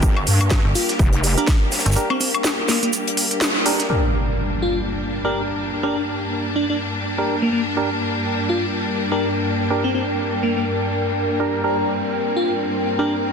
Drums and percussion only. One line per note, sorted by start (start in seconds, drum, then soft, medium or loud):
0.03 kick loud
0.03 closed hi-hat medium
0.03 shaker medium
0.17 high woodblock medium
0.27 open hi-hat loud
0.27 shaker medium
0.41 closed hi-hat soft
0.41 closed hi-hat medium
0.41 high woodblock medium
0.50 kick loud
0.50 snare loud
0.50 closed hi-hat medium
0.50 shaker medium
0.75 open hi-hat medium
0.75 shaker medium
0.89 snare soft
0.89 closed hi-hat medium
0.99 kick loud
0.99 closed hi-hat medium
0.99 shaker medium
1.13 closed hi-hat soft
1.24 open hi-hat loud
1.24 shaker medium
1.38 closed hi-hat medium
1.47 kick loud
1.47 snare loud
1.47 closed hi-hat medium
1.47 shaker medium
1.71 snare medium
1.71 open hi-hat medium
1.71 shaker medium
1.79 snare medium
1.79 shaker medium
1.86 snare loud
1.86 closed hi-hat medium
1.86 shaker medium
1.91 snare medium
1.91 shaker medium
1.96 closed hi-hat medium
1.96 shaker medium
2.10 high woodblock medium
2.21 open hi-hat loud
2.21 shaker medium
2.34 closed hi-hat medium
2.34 high woodblock medium
2.44 snare loud
2.44 closed hi-hat medium
2.44 shaker medium
2.68 snare medium
2.68 open hi-hat medium
2.68 shaker medium
2.83 closed hi-hat medium
2.93 closed hi-hat medium
2.93 shaker medium
3.07 closed hi-hat soft
3.17 open hi-hat loud
3.17 shaker medium
3.31 closed hi-hat medium
3.41 snare loud
3.41 closed hi-hat medium
3.41 shaker medium
3.66 open hi-hat medium
3.66 shaker medium
3.80 snare soft
3.80 closed hi-hat medium